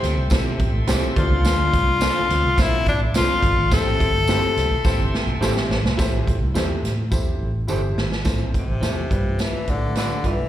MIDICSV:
0, 0, Header, 1, 8, 480
1, 0, Start_track
1, 0, Key_signature, 0, "minor"
1, 0, Tempo, 567644
1, 1224, Time_signature, 4, 2, 24, 8
1, 8868, End_track
2, 0, Start_track
2, 0, Title_t, "Tonewheel organ"
2, 0, Program_c, 0, 16
2, 0, Note_on_c, 0, 69, 65
2, 0, Note_on_c, 0, 76, 65
2, 0, Note_on_c, 0, 79, 61
2, 0, Note_on_c, 0, 84, 70
2, 968, Note_off_c, 0, 79, 0
2, 969, Note_off_c, 0, 76, 0
2, 987, Note_on_c, 0, 77, 61
2, 989, Note_on_c, 0, 74, 59
2, 3121, Note_off_c, 0, 77, 0
2, 3122, Note_off_c, 0, 74, 0
2, 3130, Note_on_c, 0, 79, 65
2, 3135, Note_on_c, 0, 76, 55
2, 5026, Note_off_c, 0, 84, 0
2, 5028, Note_off_c, 0, 69, 0
2, 5034, Note_off_c, 0, 79, 0
2, 5036, Note_off_c, 0, 76, 0
2, 8868, End_track
3, 0, Start_track
3, 0, Title_t, "Upright piano"
3, 0, Program_c, 1, 0
3, 0, Note_on_c, 1, 60, 74
3, 0, Note_on_c, 1, 64, 74
3, 0, Note_on_c, 1, 67, 69
3, 0, Note_on_c, 1, 69, 72
3, 0, Note_on_c, 1, 72, 86
3, 94, Note_off_c, 1, 60, 0
3, 95, Note_off_c, 1, 64, 0
3, 96, Note_off_c, 1, 67, 0
3, 99, Note_off_c, 1, 69, 0
3, 100, Note_off_c, 1, 72, 0
3, 254, Note_on_c, 1, 60, 96
3, 259, Note_on_c, 1, 64, 85
3, 260, Note_on_c, 1, 67, 83
3, 263, Note_on_c, 1, 69, 79
3, 266, Note_on_c, 1, 72, 98
3, 568, Note_off_c, 1, 60, 0
3, 571, Note_off_c, 1, 64, 0
3, 571, Note_off_c, 1, 67, 0
3, 573, Note_off_c, 1, 69, 0
3, 574, Note_off_c, 1, 72, 0
3, 738, Note_on_c, 1, 60, 97
3, 739, Note_on_c, 1, 64, 84
3, 742, Note_on_c, 1, 67, 90
3, 746, Note_on_c, 1, 69, 91
3, 751, Note_on_c, 1, 72, 104
3, 958, Note_off_c, 1, 60, 0
3, 971, Note_on_c, 1, 60, 83
3, 975, Note_off_c, 1, 69, 0
3, 977, Note_off_c, 1, 72, 0
3, 980, Note_on_c, 1, 65, 79
3, 981, Note_off_c, 1, 64, 0
3, 982, Note_on_c, 1, 62, 78
3, 983, Note_off_c, 1, 67, 0
3, 985, Note_on_c, 1, 50, 71
3, 987, Note_on_c, 1, 69, 76
3, 990, Note_on_c, 1, 72, 92
3, 1553, Note_off_c, 1, 60, 0
3, 1558, Note_off_c, 1, 62, 0
3, 1558, Note_off_c, 1, 65, 0
3, 1561, Note_off_c, 1, 69, 0
3, 1563, Note_off_c, 1, 72, 0
3, 1670, Note_off_c, 1, 50, 0
3, 1697, Note_on_c, 1, 60, 92
3, 1700, Note_on_c, 1, 62, 90
3, 1703, Note_on_c, 1, 65, 93
3, 1709, Note_on_c, 1, 69, 88
3, 1714, Note_on_c, 1, 72, 109
3, 2009, Note_off_c, 1, 60, 0
3, 2010, Note_off_c, 1, 62, 0
3, 2012, Note_off_c, 1, 65, 0
3, 2015, Note_off_c, 1, 69, 0
3, 2018, Note_off_c, 1, 72, 0
3, 2185, Note_on_c, 1, 60, 78
3, 2186, Note_on_c, 1, 62, 69
3, 2192, Note_on_c, 1, 65, 72
3, 2195, Note_on_c, 1, 69, 67
3, 2200, Note_on_c, 1, 72, 86
3, 2492, Note_off_c, 1, 60, 0
3, 2493, Note_off_c, 1, 62, 0
3, 2496, Note_off_c, 1, 65, 0
3, 2497, Note_off_c, 1, 69, 0
3, 2500, Note_off_c, 1, 72, 0
3, 2661, Note_on_c, 1, 60, 77
3, 2664, Note_on_c, 1, 62, 71
3, 2664, Note_on_c, 1, 65, 75
3, 2667, Note_on_c, 1, 69, 76
3, 2673, Note_on_c, 1, 72, 85
3, 2970, Note_off_c, 1, 60, 0
3, 2971, Note_off_c, 1, 62, 0
3, 2972, Note_off_c, 1, 65, 0
3, 2973, Note_off_c, 1, 69, 0
3, 2976, Note_off_c, 1, 72, 0
3, 3144, Note_on_c, 1, 60, 102
3, 3149, Note_on_c, 1, 45, 64
3, 3150, Note_on_c, 1, 64, 91
3, 3150, Note_on_c, 1, 67, 91
3, 3154, Note_on_c, 1, 69, 85
3, 3158, Note_on_c, 1, 72, 111
3, 3451, Note_off_c, 1, 60, 0
3, 3454, Note_off_c, 1, 64, 0
3, 3454, Note_off_c, 1, 67, 0
3, 3456, Note_off_c, 1, 69, 0
3, 3458, Note_off_c, 1, 72, 0
3, 3625, Note_on_c, 1, 64, 75
3, 3626, Note_on_c, 1, 60, 79
3, 3632, Note_on_c, 1, 67, 73
3, 3632, Note_on_c, 1, 69, 77
3, 3637, Note_on_c, 1, 72, 83
3, 3830, Note_off_c, 1, 45, 0
3, 3931, Note_off_c, 1, 64, 0
3, 3932, Note_off_c, 1, 60, 0
3, 3935, Note_off_c, 1, 67, 0
3, 3935, Note_off_c, 1, 69, 0
3, 3937, Note_off_c, 1, 72, 0
3, 4095, Note_on_c, 1, 60, 94
3, 4100, Note_on_c, 1, 67, 76
3, 4101, Note_on_c, 1, 64, 82
3, 4104, Note_on_c, 1, 69, 82
3, 4105, Note_on_c, 1, 72, 104
3, 4406, Note_off_c, 1, 60, 0
3, 4409, Note_off_c, 1, 64, 0
3, 4409, Note_off_c, 1, 67, 0
3, 4411, Note_off_c, 1, 69, 0
3, 4411, Note_off_c, 1, 72, 0
3, 4573, Note_on_c, 1, 60, 91
3, 4578, Note_on_c, 1, 64, 91
3, 4581, Note_on_c, 1, 67, 83
3, 4586, Note_on_c, 1, 72, 105
3, 4587, Note_on_c, 1, 69, 82
3, 4885, Note_off_c, 1, 60, 0
3, 4887, Note_off_c, 1, 64, 0
3, 4889, Note_off_c, 1, 67, 0
3, 4892, Note_off_c, 1, 69, 0
3, 4892, Note_off_c, 1, 72, 0
3, 5050, Note_on_c, 1, 64, 110
3, 5060, Note_on_c, 1, 67, 99
3, 5063, Note_on_c, 1, 69, 101
3, 5064, Note_on_c, 1, 45, 76
3, 5067, Note_on_c, 1, 72, 115
3, 5364, Note_off_c, 1, 64, 0
3, 5369, Note_off_c, 1, 67, 0
3, 5370, Note_off_c, 1, 69, 0
3, 5372, Note_off_c, 1, 72, 0
3, 5533, Note_on_c, 1, 64, 92
3, 5541, Note_on_c, 1, 69, 81
3, 5545, Note_on_c, 1, 67, 83
3, 5547, Note_on_c, 1, 72, 95
3, 5748, Note_off_c, 1, 45, 0
3, 5845, Note_off_c, 1, 64, 0
3, 5849, Note_off_c, 1, 69, 0
3, 5851, Note_off_c, 1, 67, 0
3, 5852, Note_off_c, 1, 72, 0
3, 6011, Note_on_c, 1, 64, 84
3, 6017, Note_on_c, 1, 67, 79
3, 6021, Note_on_c, 1, 69, 74
3, 6023, Note_on_c, 1, 72, 95
3, 6325, Note_off_c, 1, 64, 0
3, 6328, Note_off_c, 1, 67, 0
3, 6330, Note_off_c, 1, 69, 0
3, 6331, Note_off_c, 1, 72, 0
3, 6491, Note_on_c, 1, 64, 88
3, 6495, Note_on_c, 1, 67, 81
3, 6497, Note_on_c, 1, 69, 82
3, 6505, Note_on_c, 1, 72, 95
3, 6805, Note_off_c, 1, 64, 0
3, 6808, Note_off_c, 1, 67, 0
3, 6809, Note_off_c, 1, 69, 0
3, 6812, Note_off_c, 1, 72, 0
3, 6971, Note_on_c, 1, 60, 80
3, 6973, Note_on_c, 1, 64, 73
3, 6977, Note_on_c, 1, 45, 66
3, 6980, Note_on_c, 1, 69, 74
3, 6981, Note_on_c, 1, 72, 85
3, 7286, Note_off_c, 1, 60, 0
3, 7287, Note_off_c, 1, 64, 0
3, 7291, Note_off_c, 1, 69, 0
3, 7291, Note_off_c, 1, 72, 0
3, 7445, Note_on_c, 1, 60, 63
3, 7451, Note_on_c, 1, 64, 59
3, 7456, Note_on_c, 1, 69, 56
3, 7464, Note_on_c, 1, 72, 72
3, 7668, Note_off_c, 1, 45, 0
3, 7693, Note_on_c, 1, 62, 70
3, 7695, Note_off_c, 1, 60, 0
3, 7698, Note_off_c, 1, 64, 0
3, 7699, Note_on_c, 1, 65, 64
3, 7700, Note_off_c, 1, 69, 0
3, 7704, Note_off_c, 1, 72, 0
3, 7706, Note_on_c, 1, 43, 55
3, 7706, Note_on_c, 1, 67, 62
3, 7709, Note_on_c, 1, 71, 74
3, 8277, Note_off_c, 1, 62, 0
3, 8280, Note_off_c, 1, 65, 0
3, 8283, Note_off_c, 1, 67, 0
3, 8285, Note_off_c, 1, 71, 0
3, 8394, Note_off_c, 1, 43, 0
3, 8407, Note_on_c, 1, 62, 71
3, 8410, Note_on_c, 1, 65, 64
3, 8412, Note_on_c, 1, 67, 61
3, 8418, Note_on_c, 1, 71, 72
3, 8728, Note_off_c, 1, 62, 0
3, 8729, Note_off_c, 1, 65, 0
3, 8730, Note_off_c, 1, 67, 0
3, 8733, Note_off_c, 1, 71, 0
3, 8868, End_track
4, 0, Start_track
4, 0, Title_t, "Clean electric guitar"
4, 0, Program_c, 2, 27
4, 740, Note_on_c, 2, 60, 94
4, 747, Note_on_c, 2, 67, 96
4, 752, Note_on_c, 2, 69, 98
4, 837, Note_off_c, 2, 60, 0
4, 840, Note_off_c, 2, 67, 0
4, 843, Note_off_c, 2, 69, 0
4, 1698, Note_on_c, 2, 60, 78
4, 1706, Note_on_c, 2, 65, 89
4, 1712, Note_on_c, 2, 69, 87
4, 1795, Note_off_c, 2, 60, 0
4, 1799, Note_off_c, 2, 65, 0
4, 1802, Note_off_c, 2, 69, 0
4, 2664, Note_on_c, 2, 60, 90
4, 2668, Note_on_c, 2, 65, 96
4, 2674, Note_on_c, 2, 69, 99
4, 2757, Note_off_c, 2, 60, 0
4, 2759, Note_off_c, 2, 65, 0
4, 2762, Note_off_c, 2, 69, 0
4, 3619, Note_on_c, 2, 60, 70
4, 3626, Note_on_c, 2, 67, 81
4, 3629, Note_on_c, 2, 69, 87
4, 3714, Note_off_c, 2, 60, 0
4, 3718, Note_off_c, 2, 67, 0
4, 3719, Note_off_c, 2, 69, 0
4, 4573, Note_on_c, 2, 60, 83
4, 4579, Note_on_c, 2, 67, 94
4, 4588, Note_on_c, 2, 69, 102
4, 4670, Note_off_c, 2, 60, 0
4, 4673, Note_off_c, 2, 67, 0
4, 4678, Note_off_c, 2, 69, 0
4, 5535, Note_on_c, 2, 60, 72
4, 5544, Note_on_c, 2, 67, 82
4, 5549, Note_on_c, 2, 69, 82
4, 5632, Note_off_c, 2, 60, 0
4, 5636, Note_off_c, 2, 67, 0
4, 5638, Note_off_c, 2, 69, 0
4, 6501, Note_on_c, 2, 60, 78
4, 6507, Note_on_c, 2, 67, 89
4, 6511, Note_on_c, 2, 69, 94
4, 6595, Note_off_c, 2, 60, 0
4, 6598, Note_off_c, 2, 67, 0
4, 6601, Note_off_c, 2, 69, 0
4, 7450, Note_on_c, 2, 60, 69
4, 7463, Note_on_c, 2, 64, 59
4, 7468, Note_on_c, 2, 69, 64
4, 7551, Note_off_c, 2, 60, 0
4, 7558, Note_off_c, 2, 64, 0
4, 7560, Note_off_c, 2, 69, 0
4, 8419, Note_on_c, 2, 62, 72
4, 8426, Note_on_c, 2, 65, 77
4, 8432, Note_on_c, 2, 71, 83
4, 8518, Note_off_c, 2, 62, 0
4, 8522, Note_off_c, 2, 65, 0
4, 8525, Note_off_c, 2, 71, 0
4, 8655, Note_on_c, 2, 62, 54
4, 8667, Note_on_c, 2, 65, 62
4, 8670, Note_on_c, 2, 71, 64
4, 8736, Note_off_c, 2, 62, 0
4, 8742, Note_off_c, 2, 65, 0
4, 8743, Note_off_c, 2, 71, 0
4, 8868, End_track
5, 0, Start_track
5, 0, Title_t, "Tenor saxophone"
5, 0, Program_c, 3, 66
5, 0, Note_on_c, 3, 60, 82
5, 270, Note_off_c, 3, 60, 0
5, 1008, Note_on_c, 3, 65, 100
5, 2207, Note_on_c, 3, 64, 105
5, 2220, Note_off_c, 3, 65, 0
5, 2434, Note_off_c, 3, 64, 0
5, 2441, Note_on_c, 3, 62, 95
5, 2545, Note_off_c, 3, 62, 0
5, 2683, Note_on_c, 3, 65, 92
5, 3119, Note_off_c, 3, 65, 0
5, 3161, Note_on_c, 3, 69, 106
5, 4555, Note_off_c, 3, 69, 0
5, 7255, Note_on_c, 3, 48, 78
5, 7958, Note_on_c, 3, 52, 92
5, 7971, Note_off_c, 3, 48, 0
5, 8202, Note_on_c, 3, 50, 83
5, 8214, Note_off_c, 3, 52, 0
5, 8428, Note_off_c, 3, 50, 0
5, 8434, Note_on_c, 3, 50, 83
5, 8684, Note_on_c, 3, 52, 87
5, 8697, Note_off_c, 3, 50, 0
5, 8868, Note_off_c, 3, 52, 0
5, 8868, End_track
6, 0, Start_track
6, 0, Title_t, "Fingered electric bass"
6, 0, Program_c, 4, 33
6, 24, Note_on_c, 4, 38, 90
6, 127, Note_off_c, 4, 38, 0
6, 141, Note_on_c, 4, 36, 88
6, 245, Note_off_c, 4, 36, 0
6, 261, Note_on_c, 4, 35, 96
6, 466, Note_off_c, 4, 35, 0
6, 504, Note_on_c, 4, 33, 96
6, 708, Note_off_c, 4, 33, 0
6, 736, Note_on_c, 4, 36, 102
6, 842, Note_off_c, 4, 36, 0
6, 983, Note_on_c, 4, 38, 97
6, 1085, Note_off_c, 4, 38, 0
6, 1101, Note_on_c, 4, 37, 94
6, 1204, Note_off_c, 4, 37, 0
6, 1225, Note_on_c, 4, 38, 115
6, 1428, Note_off_c, 4, 38, 0
6, 1466, Note_on_c, 4, 36, 100
6, 1770, Note_off_c, 4, 36, 0
6, 1942, Note_on_c, 4, 38, 92
6, 2044, Note_off_c, 4, 38, 0
6, 2058, Note_on_c, 4, 36, 82
6, 2162, Note_off_c, 4, 36, 0
6, 2181, Note_on_c, 4, 35, 91
6, 2385, Note_off_c, 4, 35, 0
6, 2423, Note_on_c, 4, 33, 90
6, 2627, Note_off_c, 4, 33, 0
6, 2657, Note_on_c, 4, 36, 95
6, 2761, Note_off_c, 4, 36, 0
6, 2896, Note_on_c, 4, 31, 96
6, 3000, Note_off_c, 4, 31, 0
6, 3013, Note_on_c, 4, 32, 107
6, 3118, Note_off_c, 4, 32, 0
6, 3141, Note_on_c, 4, 33, 100
6, 3344, Note_off_c, 4, 33, 0
6, 3383, Note_on_c, 4, 31, 100
6, 3687, Note_off_c, 4, 31, 0
6, 3860, Note_on_c, 4, 36, 85
6, 3962, Note_off_c, 4, 36, 0
6, 3969, Note_on_c, 4, 35, 83
6, 4076, Note_off_c, 4, 35, 0
6, 4099, Note_on_c, 4, 33, 100
6, 4201, Note_off_c, 4, 33, 0
6, 4208, Note_on_c, 4, 31, 77
6, 4315, Note_off_c, 4, 31, 0
6, 4454, Note_on_c, 4, 35, 84
6, 4558, Note_off_c, 4, 35, 0
6, 4572, Note_on_c, 4, 33, 101
6, 4677, Note_off_c, 4, 33, 0
6, 4812, Note_on_c, 4, 33, 88
6, 4917, Note_off_c, 4, 33, 0
6, 4932, Note_on_c, 4, 36, 90
6, 5037, Note_off_c, 4, 36, 0
6, 5062, Note_on_c, 4, 33, 102
6, 5367, Note_off_c, 4, 33, 0
6, 5412, Note_on_c, 4, 36, 84
6, 5517, Note_off_c, 4, 36, 0
6, 5538, Note_on_c, 4, 40, 89
6, 5742, Note_off_c, 4, 40, 0
6, 5770, Note_on_c, 4, 45, 91
6, 5978, Note_off_c, 4, 45, 0
6, 6018, Note_on_c, 4, 40, 87
6, 6223, Note_off_c, 4, 40, 0
6, 6254, Note_on_c, 4, 33, 83
6, 6461, Note_off_c, 4, 33, 0
6, 6496, Note_on_c, 4, 31, 90
6, 6702, Note_off_c, 4, 31, 0
6, 6734, Note_on_c, 4, 32, 75
6, 6942, Note_off_c, 4, 32, 0
6, 6975, Note_on_c, 4, 33, 84
6, 7182, Note_off_c, 4, 33, 0
6, 7339, Note_on_c, 4, 33, 80
6, 7443, Note_off_c, 4, 33, 0
6, 7452, Note_on_c, 4, 40, 81
6, 7661, Note_off_c, 4, 40, 0
6, 7702, Note_on_c, 4, 43, 80
6, 7908, Note_off_c, 4, 43, 0
6, 8183, Note_on_c, 4, 45, 84
6, 8491, Note_off_c, 4, 45, 0
6, 8660, Note_on_c, 4, 43, 74
6, 8766, Note_off_c, 4, 43, 0
6, 8785, Note_on_c, 4, 35, 79
6, 8868, Note_off_c, 4, 35, 0
6, 8868, End_track
7, 0, Start_track
7, 0, Title_t, "Muted fingered electric bass strokes"
7, 8058, Note_on_c, 9, 29, 36
7, 8143, Note_off_c, 9, 29, 0
7, 8868, End_track
8, 0, Start_track
8, 0, Title_t, "Drums"
8, 30, Note_on_c, 9, 42, 75
8, 32, Note_on_c, 9, 38, 38
8, 114, Note_off_c, 9, 42, 0
8, 117, Note_off_c, 9, 38, 0
8, 253, Note_on_c, 9, 54, 73
8, 263, Note_on_c, 9, 36, 99
8, 268, Note_on_c, 9, 42, 93
8, 274, Note_on_c, 9, 38, 106
8, 338, Note_off_c, 9, 54, 0
8, 347, Note_off_c, 9, 36, 0
8, 353, Note_off_c, 9, 42, 0
8, 359, Note_off_c, 9, 38, 0
8, 503, Note_on_c, 9, 42, 65
8, 505, Note_on_c, 9, 36, 90
8, 587, Note_off_c, 9, 42, 0
8, 589, Note_off_c, 9, 36, 0
8, 739, Note_on_c, 9, 42, 94
8, 748, Note_on_c, 9, 54, 92
8, 752, Note_on_c, 9, 38, 119
8, 823, Note_off_c, 9, 42, 0
8, 832, Note_off_c, 9, 54, 0
8, 837, Note_off_c, 9, 38, 0
8, 982, Note_on_c, 9, 42, 74
8, 984, Note_on_c, 9, 36, 107
8, 1067, Note_off_c, 9, 42, 0
8, 1069, Note_off_c, 9, 36, 0
8, 1223, Note_on_c, 9, 54, 88
8, 1228, Note_on_c, 9, 42, 85
8, 1232, Note_on_c, 9, 38, 105
8, 1307, Note_off_c, 9, 54, 0
8, 1312, Note_off_c, 9, 42, 0
8, 1316, Note_off_c, 9, 38, 0
8, 1467, Note_on_c, 9, 36, 98
8, 1467, Note_on_c, 9, 42, 68
8, 1552, Note_off_c, 9, 36, 0
8, 1552, Note_off_c, 9, 42, 0
8, 1698, Note_on_c, 9, 54, 101
8, 1706, Note_on_c, 9, 38, 118
8, 1706, Note_on_c, 9, 42, 79
8, 1783, Note_off_c, 9, 54, 0
8, 1790, Note_off_c, 9, 38, 0
8, 1791, Note_off_c, 9, 42, 0
8, 1947, Note_on_c, 9, 42, 76
8, 1950, Note_on_c, 9, 38, 35
8, 2032, Note_off_c, 9, 42, 0
8, 2034, Note_off_c, 9, 38, 0
8, 2180, Note_on_c, 9, 36, 101
8, 2183, Note_on_c, 9, 54, 81
8, 2185, Note_on_c, 9, 42, 95
8, 2191, Note_on_c, 9, 38, 111
8, 2264, Note_off_c, 9, 36, 0
8, 2268, Note_off_c, 9, 54, 0
8, 2270, Note_off_c, 9, 42, 0
8, 2275, Note_off_c, 9, 38, 0
8, 2422, Note_on_c, 9, 36, 89
8, 2423, Note_on_c, 9, 42, 59
8, 2507, Note_off_c, 9, 36, 0
8, 2507, Note_off_c, 9, 42, 0
8, 2656, Note_on_c, 9, 42, 96
8, 2665, Note_on_c, 9, 54, 95
8, 2669, Note_on_c, 9, 38, 121
8, 2740, Note_off_c, 9, 42, 0
8, 2749, Note_off_c, 9, 54, 0
8, 2754, Note_off_c, 9, 38, 0
8, 2897, Note_on_c, 9, 36, 94
8, 2900, Note_on_c, 9, 42, 80
8, 2981, Note_off_c, 9, 36, 0
8, 2985, Note_off_c, 9, 42, 0
8, 3141, Note_on_c, 9, 54, 84
8, 3142, Note_on_c, 9, 36, 114
8, 3145, Note_on_c, 9, 42, 87
8, 3149, Note_on_c, 9, 38, 102
8, 3226, Note_off_c, 9, 54, 0
8, 3227, Note_off_c, 9, 36, 0
8, 3230, Note_off_c, 9, 42, 0
8, 3234, Note_off_c, 9, 38, 0
8, 3386, Note_on_c, 9, 36, 98
8, 3390, Note_on_c, 9, 42, 67
8, 3470, Note_off_c, 9, 36, 0
8, 3475, Note_off_c, 9, 42, 0
8, 3615, Note_on_c, 9, 54, 88
8, 3627, Note_on_c, 9, 38, 116
8, 3628, Note_on_c, 9, 42, 81
8, 3699, Note_off_c, 9, 54, 0
8, 3712, Note_off_c, 9, 38, 0
8, 3712, Note_off_c, 9, 42, 0
8, 3867, Note_on_c, 9, 42, 75
8, 3869, Note_on_c, 9, 38, 38
8, 3952, Note_off_c, 9, 42, 0
8, 3954, Note_off_c, 9, 38, 0
8, 4097, Note_on_c, 9, 54, 77
8, 4099, Note_on_c, 9, 36, 106
8, 4111, Note_on_c, 9, 38, 62
8, 4181, Note_off_c, 9, 54, 0
8, 4184, Note_off_c, 9, 36, 0
8, 4196, Note_off_c, 9, 38, 0
8, 4350, Note_on_c, 9, 38, 75
8, 4435, Note_off_c, 9, 38, 0
8, 4587, Note_on_c, 9, 54, 85
8, 4588, Note_on_c, 9, 38, 82
8, 4672, Note_off_c, 9, 54, 0
8, 4673, Note_off_c, 9, 38, 0
8, 4709, Note_on_c, 9, 38, 80
8, 4794, Note_off_c, 9, 38, 0
8, 4830, Note_on_c, 9, 38, 99
8, 4914, Note_off_c, 9, 38, 0
8, 4953, Note_on_c, 9, 38, 99
8, 5037, Note_off_c, 9, 38, 0
8, 5063, Note_on_c, 9, 54, 82
8, 5064, Note_on_c, 9, 36, 116
8, 5067, Note_on_c, 9, 42, 80
8, 5071, Note_on_c, 9, 38, 100
8, 5147, Note_off_c, 9, 54, 0
8, 5148, Note_off_c, 9, 36, 0
8, 5152, Note_off_c, 9, 42, 0
8, 5156, Note_off_c, 9, 38, 0
8, 5306, Note_on_c, 9, 36, 91
8, 5311, Note_on_c, 9, 42, 60
8, 5391, Note_off_c, 9, 36, 0
8, 5395, Note_off_c, 9, 42, 0
8, 5541, Note_on_c, 9, 54, 91
8, 5550, Note_on_c, 9, 38, 99
8, 5551, Note_on_c, 9, 42, 76
8, 5626, Note_off_c, 9, 54, 0
8, 5635, Note_off_c, 9, 38, 0
8, 5635, Note_off_c, 9, 42, 0
8, 5790, Note_on_c, 9, 42, 66
8, 5792, Note_on_c, 9, 38, 38
8, 5875, Note_off_c, 9, 42, 0
8, 5877, Note_off_c, 9, 38, 0
8, 6017, Note_on_c, 9, 54, 73
8, 6018, Note_on_c, 9, 36, 96
8, 6102, Note_off_c, 9, 54, 0
8, 6103, Note_off_c, 9, 36, 0
8, 6497, Note_on_c, 9, 54, 82
8, 6581, Note_off_c, 9, 54, 0
8, 6748, Note_on_c, 9, 38, 87
8, 6833, Note_off_c, 9, 38, 0
8, 6868, Note_on_c, 9, 38, 85
8, 6953, Note_off_c, 9, 38, 0
8, 6974, Note_on_c, 9, 54, 74
8, 6979, Note_on_c, 9, 42, 71
8, 6980, Note_on_c, 9, 36, 97
8, 6983, Note_on_c, 9, 38, 83
8, 7059, Note_off_c, 9, 54, 0
8, 7063, Note_off_c, 9, 42, 0
8, 7064, Note_off_c, 9, 36, 0
8, 7067, Note_off_c, 9, 38, 0
8, 7225, Note_on_c, 9, 36, 83
8, 7227, Note_on_c, 9, 42, 56
8, 7309, Note_off_c, 9, 36, 0
8, 7311, Note_off_c, 9, 42, 0
8, 7464, Note_on_c, 9, 54, 78
8, 7466, Note_on_c, 9, 38, 98
8, 7466, Note_on_c, 9, 42, 66
8, 7548, Note_off_c, 9, 54, 0
8, 7551, Note_off_c, 9, 38, 0
8, 7551, Note_off_c, 9, 42, 0
8, 7702, Note_on_c, 9, 36, 93
8, 7707, Note_on_c, 9, 42, 64
8, 7787, Note_off_c, 9, 36, 0
8, 7792, Note_off_c, 9, 42, 0
8, 7939, Note_on_c, 9, 54, 69
8, 7945, Note_on_c, 9, 42, 78
8, 7951, Note_on_c, 9, 38, 98
8, 8024, Note_off_c, 9, 54, 0
8, 8030, Note_off_c, 9, 42, 0
8, 8036, Note_off_c, 9, 38, 0
8, 8181, Note_on_c, 9, 42, 52
8, 8183, Note_on_c, 9, 36, 72
8, 8266, Note_off_c, 9, 42, 0
8, 8268, Note_off_c, 9, 36, 0
8, 8418, Note_on_c, 9, 42, 81
8, 8431, Note_on_c, 9, 38, 98
8, 8432, Note_on_c, 9, 54, 76
8, 8503, Note_off_c, 9, 42, 0
8, 8516, Note_off_c, 9, 38, 0
8, 8516, Note_off_c, 9, 54, 0
8, 8660, Note_on_c, 9, 36, 70
8, 8661, Note_on_c, 9, 42, 65
8, 8744, Note_off_c, 9, 36, 0
8, 8745, Note_off_c, 9, 42, 0
8, 8868, End_track
0, 0, End_of_file